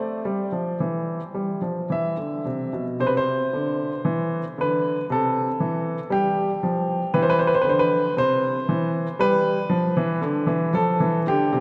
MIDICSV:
0, 0, Header, 1, 2, 480
1, 0, Start_track
1, 0, Key_signature, 0, "major"
1, 0, Tempo, 1115242
1, 813, Tempo, 1081081
1, 1299, Time_signature, 3, 2, 24, 8
1, 1773, Tempo, 1030928
1, 5289, End_track
2, 0, Start_track
2, 0, Title_t, "Grand piano"
2, 0, Program_c, 0, 0
2, 0, Note_on_c, 0, 57, 43
2, 0, Note_on_c, 0, 72, 56
2, 92, Note_off_c, 0, 57, 0
2, 108, Note_on_c, 0, 55, 49
2, 215, Note_off_c, 0, 55, 0
2, 225, Note_on_c, 0, 53, 44
2, 334, Note_off_c, 0, 53, 0
2, 345, Note_on_c, 0, 52, 49
2, 514, Note_off_c, 0, 52, 0
2, 579, Note_on_c, 0, 55, 42
2, 690, Note_off_c, 0, 55, 0
2, 695, Note_on_c, 0, 53, 44
2, 808, Note_off_c, 0, 53, 0
2, 817, Note_on_c, 0, 52, 44
2, 827, Note_on_c, 0, 76, 65
2, 931, Note_off_c, 0, 52, 0
2, 939, Note_on_c, 0, 50, 40
2, 1054, Note_off_c, 0, 50, 0
2, 1063, Note_off_c, 0, 72, 0
2, 1064, Note_on_c, 0, 48, 49
2, 1177, Note_off_c, 0, 48, 0
2, 1187, Note_on_c, 0, 47, 44
2, 1234, Note_off_c, 0, 76, 0
2, 1297, Note_off_c, 0, 47, 0
2, 1306, Note_on_c, 0, 48, 55
2, 1308, Note_on_c, 0, 72, 75
2, 1335, Note_off_c, 0, 72, 0
2, 1336, Note_on_c, 0, 71, 67
2, 1365, Note_off_c, 0, 71, 0
2, 1382, Note_on_c, 0, 72, 79
2, 1474, Note_off_c, 0, 48, 0
2, 1543, Note_on_c, 0, 50, 52
2, 1710, Note_off_c, 0, 50, 0
2, 1771, Note_on_c, 0, 52, 60
2, 1927, Note_off_c, 0, 72, 0
2, 1947, Note_off_c, 0, 52, 0
2, 2020, Note_on_c, 0, 50, 51
2, 2033, Note_on_c, 0, 71, 72
2, 2193, Note_off_c, 0, 50, 0
2, 2231, Note_off_c, 0, 71, 0
2, 2262, Note_on_c, 0, 48, 63
2, 2271, Note_on_c, 0, 69, 78
2, 2432, Note_off_c, 0, 48, 0
2, 2495, Note_on_c, 0, 52, 57
2, 2668, Note_off_c, 0, 52, 0
2, 2728, Note_on_c, 0, 55, 58
2, 2737, Note_on_c, 0, 67, 77
2, 2743, Note_off_c, 0, 69, 0
2, 2906, Note_off_c, 0, 55, 0
2, 2974, Note_on_c, 0, 53, 56
2, 3152, Note_off_c, 0, 53, 0
2, 3210, Note_on_c, 0, 71, 72
2, 3211, Note_on_c, 0, 52, 63
2, 3224, Note_off_c, 0, 67, 0
2, 3250, Note_on_c, 0, 72, 73
2, 3254, Note_off_c, 0, 71, 0
2, 3284, Note_on_c, 0, 71, 79
2, 3292, Note_off_c, 0, 72, 0
2, 3327, Note_on_c, 0, 72, 74
2, 3328, Note_off_c, 0, 71, 0
2, 3366, Note_on_c, 0, 71, 73
2, 3368, Note_off_c, 0, 72, 0
2, 3390, Note_off_c, 0, 52, 0
2, 3399, Note_on_c, 0, 72, 77
2, 3406, Note_off_c, 0, 71, 0
2, 3432, Note_on_c, 0, 71, 74
2, 3440, Note_off_c, 0, 72, 0
2, 3447, Note_on_c, 0, 50, 60
2, 3469, Note_on_c, 0, 72, 68
2, 3475, Note_off_c, 0, 71, 0
2, 3512, Note_off_c, 0, 72, 0
2, 3515, Note_on_c, 0, 71, 81
2, 3626, Note_off_c, 0, 50, 0
2, 3674, Note_off_c, 0, 71, 0
2, 3690, Note_on_c, 0, 48, 56
2, 3697, Note_on_c, 0, 72, 87
2, 3866, Note_off_c, 0, 48, 0
2, 3931, Note_on_c, 0, 52, 63
2, 4106, Note_off_c, 0, 52, 0
2, 4167, Note_on_c, 0, 55, 65
2, 4173, Note_on_c, 0, 71, 89
2, 4176, Note_off_c, 0, 72, 0
2, 4343, Note_off_c, 0, 55, 0
2, 4401, Note_on_c, 0, 53, 66
2, 4522, Note_off_c, 0, 53, 0
2, 4527, Note_on_c, 0, 52, 63
2, 4643, Note_on_c, 0, 50, 71
2, 4645, Note_off_c, 0, 52, 0
2, 4760, Note_on_c, 0, 52, 60
2, 4762, Note_off_c, 0, 50, 0
2, 4880, Note_off_c, 0, 52, 0
2, 4884, Note_on_c, 0, 53, 59
2, 4891, Note_off_c, 0, 71, 0
2, 4891, Note_on_c, 0, 69, 80
2, 5002, Note_off_c, 0, 53, 0
2, 5009, Note_on_c, 0, 52, 61
2, 5096, Note_off_c, 0, 69, 0
2, 5126, Note_off_c, 0, 52, 0
2, 5135, Note_on_c, 0, 50, 68
2, 5139, Note_on_c, 0, 67, 86
2, 5249, Note_off_c, 0, 50, 0
2, 5253, Note_on_c, 0, 48, 68
2, 5289, Note_off_c, 0, 48, 0
2, 5289, Note_off_c, 0, 67, 0
2, 5289, End_track
0, 0, End_of_file